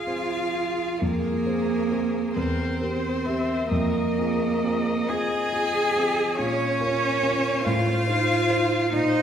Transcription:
0.00 0.07 C4 soft
0.00 1.04 F4 medium
0.00 0.07 G#4 soft
0.00 0.78 G#4 soft
0.00 0.08 C5 soft
0.00 0.98 F5 soft
0.07 0.98 C4 soft
0.07 0.98 G#4 soft
0.07 0.98 C5 soft
1.02 1.45 F2 soft
1.02 2.36 A#3 medium
1.02 2.39 G#4 soft
1.02 2.35 A#4 medium
1.46 1.87 C4 soft
1.46 1.88 G#4 soft
1.46 1.88 C5 soft
1.91 2.32 C4 soft
1.91 2.32 G#4 soft
1.91 2.33 C5 soft
2.35 2.80 E2 soft
2.35 3.68 C4 medium
2.35 2.81 A#4 soft
2.35 3.67 C5 soft
2.81 3.21 C4 soft
2.81 3.21 G4 soft
2.81 3.22 A#4 soft
2.81 3.27 C5 soft
3.25 3.67 C4 soft
3.25 3.67 G4 soft
3.25 3.67 A#4 soft
3.25 3.70 E5 soft
3.69 4.15 F2 soft
3.69 5.10 A#3 medium
3.69 5.10 A#4 medium
3.69 6.36 D#5 soft
4.17 4.60 C4 soft
4.17 4.60 F4 soft
4.17 4.60 G#4 soft
4.64 5.05 C4 soft
4.64 5.05 F4 soft
4.64 5.06 G#4 soft
5.09 5.48 C4 soft
5.09 5.49 F4 soft
5.09 6.40 G#4 medium
5.09 5.49 G#4 soft
5.09 6.38 G#5 medium
5.53 5.91 C4 soft
5.53 5.91 F4 soft
5.53 5.92 G#4 soft
5.96 6.34 C4 soft
5.96 6.35 F4 soft
5.96 6.35 G#4 soft
6.37 6.80 A#2 soft
6.37 7.64 C#4 medium
6.37 7.67 C#5 medium
6.37 7.65 C#5 medium
6.80 7.18 C#4 soft
6.80 7.19 F4 soft
6.80 7.19 A#4 soft
7.23 7.61 C#4 soft
7.23 7.61 F4 soft
7.23 7.61 A#4 soft
7.64 8.06 A2 soft
7.64 8.89 F4 medium
7.64 8.92 C5 soft
7.64 8.94 F5 medium
8.07 8.46 D#4 soft
8.07 8.46 F4 soft
8.07 8.46 C5 soft
8.50 8.88 D#4 soft
8.50 8.88 F4 soft
8.50 8.89 C5 soft
8.92 9.22 A#2 medium
8.92 9.22 D#4 medium
8.92 9.22 C5 medium
8.92 9.22 D#5 medium

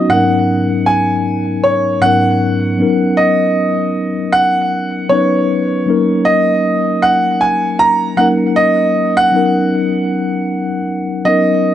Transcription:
0.00 0.10 F#3 medium
0.00 0.12 B3 medium
0.00 0.11 C#4 medium
0.00 0.12 D#4 medium
0.00 0.13 F#4 loud
0.00 0.13 D#5 medium
0.09 1.41 G#2 medium
0.09 1.41 F#3 medium
0.09 0.18 A#3 medium
0.09 1.42 C#4 medium
0.09 1.42 D#4 medium
0.09 0.90 F#5 medium
0.13 1.43 A#4 medium
0.17 1.45 B3 medium
0.86 1.66 G#5 medium
1.64 2.04 C#5 medium
2.01 2.79 G#2 medium
2.01 2.77 F#3 medium
2.01 2.78 B3 medium
2.01 2.79 C#4 medium
2.01 2.80 D#4 medium
2.01 3.21 F#5 loud
2.06 2.81 A#4 medium
2.78 4.10 F#3 medium
2.78 4.10 B3 medium
2.78 4.11 C#4 medium
2.78 4.11 D#4 medium
2.82 4.12 A#4 medium
3.17 4.29 D#5 medium
4.32 5.12 F#5 loud
5.09 5.85 F#3 medium
5.09 5.87 B3 medium
5.09 5.87 C#4 medium
5.09 5.88 D#4 medium
5.09 5.89 B4 medium
5.09 6.29 C#5 medium
5.86 7.18 F#3 medium
5.86 7.18 A#3 medium
5.86 7.19 C#4 medium
5.86 7.19 D#4 medium
5.90 7.20 A#4 medium
6.25 7.05 D#5 medium
7.02 7.42 F#5 medium
7.41 7.77 G#5 medium
7.79 8.19 A#5 loud
8.17 9.17 F#3 medium
8.17 9.18 A#3 medium
8.17 9.18 C#4 medium
8.17 9.19 D#4 medium
8.17 9.19 A#4 medium
8.17 8.26 F#5 medium
8.56 9.13 D#5 medium
9.17 11.32 F#5 loud
9.32 10.64 F#3 medium
9.32 10.64 B3 medium
9.32 10.65 C#4 medium
9.32 10.65 D#4 medium
9.36 10.66 A#4 medium
11.25 11.74 F#3 medium
11.25 11.74 B3 medium
11.25 11.74 C#4 medium
11.25 11.74 D#4 medium
11.25 11.74 A#4 medium
11.25 11.74 D#5 medium

